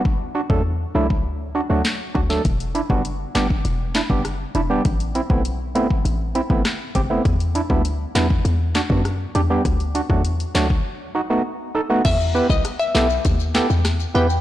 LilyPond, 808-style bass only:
\new Staff \with { instrumentName = "808-style bass" } { \clef bass \time 4/4 \key e \minor \tempo 4 = 100 d,8. e,8. c,8 d,8. d,16 r8 d,8 | e,,8. fis,,8. g,,8 e,,8. fis,,8. e,,8 | a,,8. b,,8. g,,8 a,,8. a,,16 r8 fis,,8 | e,8. d,8. e,8 e,8. fis,8. e,8 |
d,8. e,8. d,8 r2 | e,8. c,16 r8 b,,8 dis,8. e,8. e,8 | }